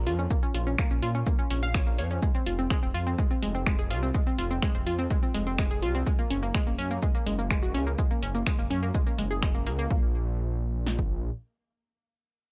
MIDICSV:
0, 0, Header, 1, 4, 480
1, 0, Start_track
1, 0, Tempo, 480000
1, 305, Time_signature, 4, 2, 24, 8
1, 12512, End_track
2, 0, Start_track
2, 0, Title_t, "Synth arpeggio sound"
2, 0, Program_c, 0, 84
2, 66, Note_on_c, 0, 65, 108
2, 157, Note_off_c, 0, 65, 0
2, 188, Note_on_c, 0, 61, 80
2, 241, Note_off_c, 0, 61, 0
2, 306, Note_on_c, 0, 58, 81
2, 361, Note_off_c, 0, 58, 0
2, 428, Note_on_c, 0, 61, 80
2, 539, Note_off_c, 0, 61, 0
2, 546, Note_on_c, 0, 65, 80
2, 600, Note_off_c, 0, 65, 0
2, 668, Note_on_c, 0, 61, 78
2, 756, Note_off_c, 0, 61, 0
2, 785, Note_on_c, 0, 58, 106
2, 877, Note_off_c, 0, 58, 0
2, 908, Note_on_c, 0, 61, 77
2, 961, Note_off_c, 0, 61, 0
2, 1025, Note_on_c, 0, 65, 101
2, 1117, Note_off_c, 0, 65, 0
2, 1148, Note_on_c, 0, 61, 78
2, 1201, Note_off_c, 0, 61, 0
2, 1265, Note_on_c, 0, 58, 86
2, 1320, Note_off_c, 0, 58, 0
2, 1387, Note_on_c, 0, 61, 77
2, 1493, Note_off_c, 0, 61, 0
2, 1505, Note_on_c, 0, 61, 79
2, 1621, Note_off_c, 0, 61, 0
2, 1627, Note_on_c, 0, 77, 98
2, 1716, Note_off_c, 0, 77, 0
2, 1745, Note_on_c, 0, 73, 84
2, 1800, Note_off_c, 0, 73, 0
2, 1867, Note_on_c, 0, 58, 75
2, 1956, Note_off_c, 0, 58, 0
2, 1985, Note_on_c, 0, 73, 78
2, 2040, Note_off_c, 0, 73, 0
2, 2108, Note_on_c, 0, 61, 78
2, 2219, Note_off_c, 0, 61, 0
2, 2225, Note_on_c, 0, 56, 82
2, 2280, Note_off_c, 0, 56, 0
2, 2347, Note_on_c, 0, 60, 78
2, 2459, Note_off_c, 0, 60, 0
2, 2464, Note_on_c, 0, 65, 77
2, 2520, Note_off_c, 0, 65, 0
2, 2587, Note_on_c, 0, 60, 78
2, 2676, Note_off_c, 0, 60, 0
2, 2705, Note_on_c, 0, 56, 101
2, 2797, Note_off_c, 0, 56, 0
2, 2827, Note_on_c, 0, 60, 79
2, 2880, Note_off_c, 0, 60, 0
2, 2944, Note_on_c, 0, 65, 101
2, 3036, Note_off_c, 0, 65, 0
2, 3067, Note_on_c, 0, 60, 79
2, 3120, Note_off_c, 0, 60, 0
2, 3184, Note_on_c, 0, 56, 88
2, 3240, Note_off_c, 0, 56, 0
2, 3306, Note_on_c, 0, 60, 76
2, 3419, Note_off_c, 0, 60, 0
2, 3424, Note_on_c, 0, 56, 78
2, 3516, Note_off_c, 0, 56, 0
2, 3547, Note_on_c, 0, 60, 75
2, 3636, Note_off_c, 0, 60, 0
2, 3664, Note_on_c, 0, 56, 103
2, 3757, Note_off_c, 0, 56, 0
2, 3787, Note_on_c, 0, 68, 76
2, 3876, Note_off_c, 0, 68, 0
2, 3904, Note_on_c, 0, 65, 103
2, 3997, Note_off_c, 0, 65, 0
2, 4027, Note_on_c, 0, 60, 78
2, 4080, Note_off_c, 0, 60, 0
2, 4144, Note_on_c, 0, 56, 87
2, 4200, Note_off_c, 0, 56, 0
2, 4267, Note_on_c, 0, 60, 81
2, 4379, Note_off_c, 0, 60, 0
2, 4385, Note_on_c, 0, 65, 80
2, 4440, Note_off_c, 0, 65, 0
2, 4507, Note_on_c, 0, 60, 78
2, 4596, Note_off_c, 0, 60, 0
2, 4624, Note_on_c, 0, 56, 107
2, 4717, Note_off_c, 0, 56, 0
2, 4747, Note_on_c, 0, 60, 79
2, 4800, Note_off_c, 0, 60, 0
2, 4864, Note_on_c, 0, 65, 100
2, 4957, Note_off_c, 0, 65, 0
2, 4987, Note_on_c, 0, 60, 80
2, 5040, Note_off_c, 0, 60, 0
2, 5105, Note_on_c, 0, 56, 87
2, 5160, Note_off_c, 0, 56, 0
2, 5228, Note_on_c, 0, 60, 76
2, 5339, Note_off_c, 0, 60, 0
2, 5345, Note_on_c, 0, 56, 79
2, 5437, Note_off_c, 0, 56, 0
2, 5467, Note_on_c, 0, 60, 76
2, 5556, Note_off_c, 0, 60, 0
2, 5584, Note_on_c, 0, 56, 101
2, 5677, Note_off_c, 0, 56, 0
2, 5707, Note_on_c, 0, 68, 78
2, 5796, Note_off_c, 0, 68, 0
2, 5825, Note_on_c, 0, 65, 103
2, 5917, Note_off_c, 0, 65, 0
2, 5948, Note_on_c, 0, 60, 78
2, 6001, Note_off_c, 0, 60, 0
2, 6065, Note_on_c, 0, 56, 84
2, 6120, Note_off_c, 0, 56, 0
2, 6188, Note_on_c, 0, 58, 78
2, 6299, Note_off_c, 0, 58, 0
2, 6305, Note_on_c, 0, 61, 78
2, 6360, Note_off_c, 0, 61, 0
2, 6427, Note_on_c, 0, 58, 76
2, 6516, Note_off_c, 0, 58, 0
2, 6545, Note_on_c, 0, 56, 106
2, 6637, Note_off_c, 0, 56, 0
2, 6667, Note_on_c, 0, 58, 78
2, 6720, Note_off_c, 0, 58, 0
2, 6785, Note_on_c, 0, 61, 99
2, 6877, Note_off_c, 0, 61, 0
2, 6907, Note_on_c, 0, 58, 81
2, 6961, Note_off_c, 0, 58, 0
2, 7025, Note_on_c, 0, 56, 86
2, 7080, Note_off_c, 0, 56, 0
2, 7148, Note_on_c, 0, 58, 79
2, 7259, Note_off_c, 0, 58, 0
2, 7265, Note_on_c, 0, 56, 81
2, 7357, Note_off_c, 0, 56, 0
2, 7387, Note_on_c, 0, 58, 76
2, 7476, Note_off_c, 0, 58, 0
2, 7504, Note_on_c, 0, 56, 103
2, 7597, Note_off_c, 0, 56, 0
2, 7627, Note_on_c, 0, 66, 79
2, 7716, Note_off_c, 0, 66, 0
2, 7744, Note_on_c, 0, 61, 100
2, 7837, Note_off_c, 0, 61, 0
2, 7867, Note_on_c, 0, 58, 77
2, 7920, Note_off_c, 0, 58, 0
2, 7984, Note_on_c, 0, 56, 82
2, 8040, Note_off_c, 0, 56, 0
2, 8107, Note_on_c, 0, 58, 79
2, 8219, Note_off_c, 0, 58, 0
2, 8224, Note_on_c, 0, 61, 79
2, 8280, Note_off_c, 0, 61, 0
2, 8347, Note_on_c, 0, 58, 79
2, 8436, Note_off_c, 0, 58, 0
2, 8464, Note_on_c, 0, 56, 102
2, 8557, Note_off_c, 0, 56, 0
2, 8587, Note_on_c, 0, 58, 79
2, 8640, Note_off_c, 0, 58, 0
2, 8704, Note_on_c, 0, 61, 102
2, 8797, Note_off_c, 0, 61, 0
2, 8827, Note_on_c, 0, 58, 82
2, 8880, Note_off_c, 0, 58, 0
2, 8945, Note_on_c, 0, 56, 85
2, 9000, Note_off_c, 0, 56, 0
2, 9067, Note_on_c, 0, 58, 75
2, 9179, Note_off_c, 0, 58, 0
2, 9184, Note_on_c, 0, 56, 78
2, 9240, Note_off_c, 0, 56, 0
2, 9307, Note_on_c, 0, 68, 76
2, 9396, Note_off_c, 0, 68, 0
2, 9424, Note_on_c, 0, 56, 87
2, 9517, Note_off_c, 0, 56, 0
2, 9547, Note_on_c, 0, 58, 78
2, 9636, Note_off_c, 0, 58, 0
2, 9665, Note_on_c, 0, 58, 79
2, 9757, Note_off_c, 0, 58, 0
2, 9788, Note_on_c, 0, 58, 106
2, 9876, Note_off_c, 0, 58, 0
2, 9905, Note_on_c, 0, 58, 95
2, 10128, Note_off_c, 0, 58, 0
2, 12512, End_track
3, 0, Start_track
3, 0, Title_t, "Detuned saw bass"
3, 0, Program_c, 1, 39
3, 65, Note_on_c, 1, 41, 95
3, 269, Note_off_c, 1, 41, 0
3, 545, Note_on_c, 1, 34, 100
3, 750, Note_off_c, 1, 34, 0
3, 908, Note_on_c, 1, 34, 104
3, 1008, Note_off_c, 1, 34, 0
3, 1026, Note_on_c, 1, 46, 86
3, 1230, Note_off_c, 1, 46, 0
3, 1505, Note_on_c, 1, 34, 99
3, 1985, Note_on_c, 1, 41, 97
3, 2000, Note_off_c, 1, 34, 0
3, 2190, Note_off_c, 1, 41, 0
3, 2465, Note_on_c, 1, 29, 102
3, 2669, Note_off_c, 1, 29, 0
3, 2827, Note_on_c, 1, 29, 105
3, 2927, Note_off_c, 1, 29, 0
3, 2945, Note_on_c, 1, 41, 91
3, 3149, Note_off_c, 1, 41, 0
3, 3425, Note_on_c, 1, 29, 99
3, 3905, Note_on_c, 1, 36, 99
3, 3920, Note_off_c, 1, 29, 0
3, 4110, Note_off_c, 1, 36, 0
3, 4385, Note_on_c, 1, 29, 102
3, 4590, Note_off_c, 1, 29, 0
3, 4747, Note_on_c, 1, 29, 102
3, 4847, Note_off_c, 1, 29, 0
3, 4865, Note_on_c, 1, 41, 89
3, 5070, Note_off_c, 1, 41, 0
3, 5345, Note_on_c, 1, 29, 99
3, 5825, Note_on_c, 1, 36, 102
3, 5840, Note_off_c, 1, 29, 0
3, 6029, Note_off_c, 1, 36, 0
3, 6305, Note_on_c, 1, 30, 101
3, 6509, Note_off_c, 1, 30, 0
3, 6667, Note_on_c, 1, 30, 103
3, 6767, Note_off_c, 1, 30, 0
3, 6785, Note_on_c, 1, 42, 88
3, 6990, Note_off_c, 1, 42, 0
3, 7265, Note_on_c, 1, 30, 97
3, 7745, Note_on_c, 1, 37, 97
3, 7760, Note_off_c, 1, 30, 0
3, 7950, Note_off_c, 1, 37, 0
3, 8225, Note_on_c, 1, 30, 104
3, 8430, Note_off_c, 1, 30, 0
3, 8588, Note_on_c, 1, 30, 104
3, 8687, Note_off_c, 1, 30, 0
3, 8705, Note_on_c, 1, 42, 91
3, 8910, Note_off_c, 1, 42, 0
3, 9185, Note_on_c, 1, 30, 95
3, 9665, Note_on_c, 1, 37, 101
3, 9680, Note_off_c, 1, 30, 0
3, 9869, Note_off_c, 1, 37, 0
3, 9905, Note_on_c, 1, 34, 100
3, 11305, Note_off_c, 1, 34, 0
3, 12512, End_track
4, 0, Start_track
4, 0, Title_t, "Drums"
4, 65, Note_on_c, 9, 46, 100
4, 65, Note_on_c, 9, 82, 54
4, 165, Note_off_c, 9, 46, 0
4, 165, Note_off_c, 9, 82, 0
4, 188, Note_on_c, 9, 82, 43
4, 288, Note_off_c, 9, 82, 0
4, 305, Note_on_c, 9, 36, 120
4, 305, Note_on_c, 9, 82, 77
4, 405, Note_off_c, 9, 36, 0
4, 405, Note_off_c, 9, 82, 0
4, 428, Note_on_c, 9, 82, 45
4, 528, Note_off_c, 9, 82, 0
4, 545, Note_on_c, 9, 46, 115
4, 545, Note_on_c, 9, 82, 56
4, 645, Note_off_c, 9, 46, 0
4, 645, Note_off_c, 9, 82, 0
4, 667, Note_on_c, 9, 82, 46
4, 767, Note_off_c, 9, 82, 0
4, 785, Note_on_c, 9, 26, 106
4, 785, Note_on_c, 9, 36, 127
4, 785, Note_on_c, 9, 82, 77
4, 885, Note_off_c, 9, 26, 0
4, 885, Note_off_c, 9, 36, 0
4, 885, Note_off_c, 9, 82, 0
4, 907, Note_on_c, 9, 82, 44
4, 1007, Note_off_c, 9, 82, 0
4, 1025, Note_on_c, 9, 46, 98
4, 1025, Note_on_c, 9, 82, 55
4, 1125, Note_off_c, 9, 46, 0
4, 1125, Note_off_c, 9, 82, 0
4, 1147, Note_on_c, 9, 82, 43
4, 1247, Note_off_c, 9, 82, 0
4, 1264, Note_on_c, 9, 82, 77
4, 1265, Note_on_c, 9, 36, 127
4, 1364, Note_off_c, 9, 82, 0
4, 1365, Note_off_c, 9, 36, 0
4, 1387, Note_on_c, 9, 82, 42
4, 1487, Note_off_c, 9, 82, 0
4, 1504, Note_on_c, 9, 46, 107
4, 1504, Note_on_c, 9, 82, 52
4, 1604, Note_off_c, 9, 46, 0
4, 1604, Note_off_c, 9, 82, 0
4, 1627, Note_on_c, 9, 82, 44
4, 1727, Note_off_c, 9, 82, 0
4, 1744, Note_on_c, 9, 26, 110
4, 1744, Note_on_c, 9, 82, 78
4, 1745, Note_on_c, 9, 36, 127
4, 1844, Note_off_c, 9, 26, 0
4, 1844, Note_off_c, 9, 82, 0
4, 1845, Note_off_c, 9, 36, 0
4, 1867, Note_on_c, 9, 82, 42
4, 1967, Note_off_c, 9, 82, 0
4, 1984, Note_on_c, 9, 46, 99
4, 1984, Note_on_c, 9, 82, 52
4, 2084, Note_off_c, 9, 46, 0
4, 2084, Note_off_c, 9, 82, 0
4, 2107, Note_on_c, 9, 82, 44
4, 2207, Note_off_c, 9, 82, 0
4, 2224, Note_on_c, 9, 82, 76
4, 2225, Note_on_c, 9, 36, 121
4, 2324, Note_off_c, 9, 82, 0
4, 2325, Note_off_c, 9, 36, 0
4, 2347, Note_on_c, 9, 82, 45
4, 2447, Note_off_c, 9, 82, 0
4, 2464, Note_on_c, 9, 46, 111
4, 2464, Note_on_c, 9, 82, 56
4, 2564, Note_off_c, 9, 46, 0
4, 2564, Note_off_c, 9, 82, 0
4, 2588, Note_on_c, 9, 82, 44
4, 2688, Note_off_c, 9, 82, 0
4, 2705, Note_on_c, 9, 26, 103
4, 2705, Note_on_c, 9, 36, 124
4, 2705, Note_on_c, 9, 82, 78
4, 2805, Note_off_c, 9, 26, 0
4, 2805, Note_off_c, 9, 36, 0
4, 2805, Note_off_c, 9, 82, 0
4, 2827, Note_on_c, 9, 82, 44
4, 2927, Note_off_c, 9, 82, 0
4, 2945, Note_on_c, 9, 46, 94
4, 2945, Note_on_c, 9, 82, 53
4, 3045, Note_off_c, 9, 46, 0
4, 3045, Note_off_c, 9, 82, 0
4, 3067, Note_on_c, 9, 82, 44
4, 3167, Note_off_c, 9, 82, 0
4, 3185, Note_on_c, 9, 36, 122
4, 3185, Note_on_c, 9, 82, 79
4, 3285, Note_off_c, 9, 36, 0
4, 3285, Note_off_c, 9, 82, 0
4, 3308, Note_on_c, 9, 82, 42
4, 3408, Note_off_c, 9, 82, 0
4, 3426, Note_on_c, 9, 46, 105
4, 3426, Note_on_c, 9, 82, 53
4, 3526, Note_off_c, 9, 46, 0
4, 3526, Note_off_c, 9, 82, 0
4, 3548, Note_on_c, 9, 82, 45
4, 3648, Note_off_c, 9, 82, 0
4, 3665, Note_on_c, 9, 26, 108
4, 3665, Note_on_c, 9, 36, 121
4, 3665, Note_on_c, 9, 82, 82
4, 3765, Note_off_c, 9, 26, 0
4, 3765, Note_off_c, 9, 36, 0
4, 3765, Note_off_c, 9, 82, 0
4, 3788, Note_on_c, 9, 82, 43
4, 3888, Note_off_c, 9, 82, 0
4, 3906, Note_on_c, 9, 46, 96
4, 3906, Note_on_c, 9, 82, 57
4, 4006, Note_off_c, 9, 46, 0
4, 4006, Note_off_c, 9, 82, 0
4, 4028, Note_on_c, 9, 82, 42
4, 4128, Note_off_c, 9, 82, 0
4, 4145, Note_on_c, 9, 36, 118
4, 4145, Note_on_c, 9, 82, 78
4, 4245, Note_off_c, 9, 36, 0
4, 4245, Note_off_c, 9, 82, 0
4, 4268, Note_on_c, 9, 82, 46
4, 4368, Note_off_c, 9, 82, 0
4, 4385, Note_on_c, 9, 46, 105
4, 4385, Note_on_c, 9, 82, 57
4, 4485, Note_off_c, 9, 46, 0
4, 4485, Note_off_c, 9, 82, 0
4, 4508, Note_on_c, 9, 82, 46
4, 4608, Note_off_c, 9, 82, 0
4, 4625, Note_on_c, 9, 26, 103
4, 4625, Note_on_c, 9, 36, 121
4, 4625, Note_on_c, 9, 82, 81
4, 4725, Note_off_c, 9, 26, 0
4, 4725, Note_off_c, 9, 36, 0
4, 4725, Note_off_c, 9, 82, 0
4, 4748, Note_on_c, 9, 82, 47
4, 4848, Note_off_c, 9, 82, 0
4, 4865, Note_on_c, 9, 46, 89
4, 4865, Note_on_c, 9, 82, 55
4, 4965, Note_off_c, 9, 46, 0
4, 4965, Note_off_c, 9, 82, 0
4, 4987, Note_on_c, 9, 82, 46
4, 5087, Note_off_c, 9, 82, 0
4, 5104, Note_on_c, 9, 82, 82
4, 5105, Note_on_c, 9, 36, 119
4, 5204, Note_off_c, 9, 82, 0
4, 5205, Note_off_c, 9, 36, 0
4, 5227, Note_on_c, 9, 82, 43
4, 5327, Note_off_c, 9, 82, 0
4, 5345, Note_on_c, 9, 46, 97
4, 5345, Note_on_c, 9, 82, 54
4, 5445, Note_off_c, 9, 46, 0
4, 5445, Note_off_c, 9, 82, 0
4, 5467, Note_on_c, 9, 82, 45
4, 5567, Note_off_c, 9, 82, 0
4, 5585, Note_on_c, 9, 26, 106
4, 5585, Note_on_c, 9, 36, 117
4, 5585, Note_on_c, 9, 82, 82
4, 5685, Note_off_c, 9, 26, 0
4, 5685, Note_off_c, 9, 36, 0
4, 5685, Note_off_c, 9, 82, 0
4, 5708, Note_on_c, 9, 82, 43
4, 5808, Note_off_c, 9, 82, 0
4, 5825, Note_on_c, 9, 46, 90
4, 5825, Note_on_c, 9, 82, 57
4, 5925, Note_off_c, 9, 46, 0
4, 5925, Note_off_c, 9, 82, 0
4, 5948, Note_on_c, 9, 82, 46
4, 6047, Note_off_c, 9, 82, 0
4, 6065, Note_on_c, 9, 36, 114
4, 6065, Note_on_c, 9, 82, 85
4, 6165, Note_off_c, 9, 36, 0
4, 6165, Note_off_c, 9, 82, 0
4, 6187, Note_on_c, 9, 82, 47
4, 6287, Note_off_c, 9, 82, 0
4, 6305, Note_on_c, 9, 46, 105
4, 6305, Note_on_c, 9, 82, 59
4, 6405, Note_off_c, 9, 46, 0
4, 6405, Note_off_c, 9, 82, 0
4, 6428, Note_on_c, 9, 82, 49
4, 6528, Note_off_c, 9, 82, 0
4, 6545, Note_on_c, 9, 26, 108
4, 6545, Note_on_c, 9, 36, 118
4, 6545, Note_on_c, 9, 82, 84
4, 6645, Note_off_c, 9, 26, 0
4, 6645, Note_off_c, 9, 36, 0
4, 6645, Note_off_c, 9, 82, 0
4, 6668, Note_on_c, 9, 82, 50
4, 6768, Note_off_c, 9, 82, 0
4, 6785, Note_on_c, 9, 46, 89
4, 6785, Note_on_c, 9, 82, 61
4, 6885, Note_off_c, 9, 46, 0
4, 6885, Note_off_c, 9, 82, 0
4, 6908, Note_on_c, 9, 82, 46
4, 7008, Note_off_c, 9, 82, 0
4, 7025, Note_on_c, 9, 36, 118
4, 7026, Note_on_c, 9, 82, 85
4, 7125, Note_off_c, 9, 36, 0
4, 7126, Note_off_c, 9, 82, 0
4, 7148, Note_on_c, 9, 82, 45
4, 7248, Note_off_c, 9, 82, 0
4, 7266, Note_on_c, 9, 46, 99
4, 7266, Note_on_c, 9, 82, 59
4, 7366, Note_off_c, 9, 46, 0
4, 7366, Note_off_c, 9, 82, 0
4, 7389, Note_on_c, 9, 82, 48
4, 7489, Note_off_c, 9, 82, 0
4, 7505, Note_on_c, 9, 36, 117
4, 7506, Note_on_c, 9, 26, 111
4, 7506, Note_on_c, 9, 82, 85
4, 7605, Note_off_c, 9, 36, 0
4, 7606, Note_off_c, 9, 26, 0
4, 7606, Note_off_c, 9, 82, 0
4, 7628, Note_on_c, 9, 82, 45
4, 7728, Note_off_c, 9, 82, 0
4, 7745, Note_on_c, 9, 46, 93
4, 7745, Note_on_c, 9, 82, 57
4, 7845, Note_off_c, 9, 46, 0
4, 7845, Note_off_c, 9, 82, 0
4, 7868, Note_on_c, 9, 82, 47
4, 7968, Note_off_c, 9, 82, 0
4, 7985, Note_on_c, 9, 36, 120
4, 7986, Note_on_c, 9, 82, 87
4, 8085, Note_off_c, 9, 36, 0
4, 8086, Note_off_c, 9, 82, 0
4, 8108, Note_on_c, 9, 82, 49
4, 8208, Note_off_c, 9, 82, 0
4, 8226, Note_on_c, 9, 46, 110
4, 8226, Note_on_c, 9, 82, 61
4, 8326, Note_off_c, 9, 46, 0
4, 8326, Note_off_c, 9, 82, 0
4, 8348, Note_on_c, 9, 82, 49
4, 8448, Note_off_c, 9, 82, 0
4, 8465, Note_on_c, 9, 36, 124
4, 8466, Note_on_c, 9, 26, 107
4, 8466, Note_on_c, 9, 82, 86
4, 8565, Note_off_c, 9, 36, 0
4, 8566, Note_off_c, 9, 26, 0
4, 8566, Note_off_c, 9, 82, 0
4, 8588, Note_on_c, 9, 82, 49
4, 8688, Note_off_c, 9, 82, 0
4, 8706, Note_on_c, 9, 46, 94
4, 8706, Note_on_c, 9, 82, 60
4, 8806, Note_off_c, 9, 46, 0
4, 8806, Note_off_c, 9, 82, 0
4, 8829, Note_on_c, 9, 82, 46
4, 8929, Note_off_c, 9, 82, 0
4, 8945, Note_on_c, 9, 36, 120
4, 8946, Note_on_c, 9, 82, 86
4, 9045, Note_off_c, 9, 36, 0
4, 9046, Note_off_c, 9, 82, 0
4, 9068, Note_on_c, 9, 82, 45
4, 9168, Note_off_c, 9, 82, 0
4, 9186, Note_on_c, 9, 46, 104
4, 9186, Note_on_c, 9, 82, 58
4, 9285, Note_off_c, 9, 46, 0
4, 9285, Note_off_c, 9, 82, 0
4, 9308, Note_on_c, 9, 82, 49
4, 9408, Note_off_c, 9, 82, 0
4, 9425, Note_on_c, 9, 36, 121
4, 9426, Note_on_c, 9, 26, 112
4, 9426, Note_on_c, 9, 82, 88
4, 9525, Note_off_c, 9, 36, 0
4, 9526, Note_off_c, 9, 26, 0
4, 9526, Note_off_c, 9, 82, 0
4, 9547, Note_on_c, 9, 82, 47
4, 9647, Note_off_c, 9, 82, 0
4, 9665, Note_on_c, 9, 46, 89
4, 9665, Note_on_c, 9, 82, 59
4, 9765, Note_off_c, 9, 46, 0
4, 9765, Note_off_c, 9, 82, 0
4, 9787, Note_on_c, 9, 82, 48
4, 9887, Note_off_c, 9, 82, 0
4, 9905, Note_on_c, 9, 36, 117
4, 10005, Note_off_c, 9, 36, 0
4, 10865, Note_on_c, 9, 38, 62
4, 10965, Note_off_c, 9, 38, 0
4, 10987, Note_on_c, 9, 36, 76
4, 11087, Note_off_c, 9, 36, 0
4, 12512, End_track
0, 0, End_of_file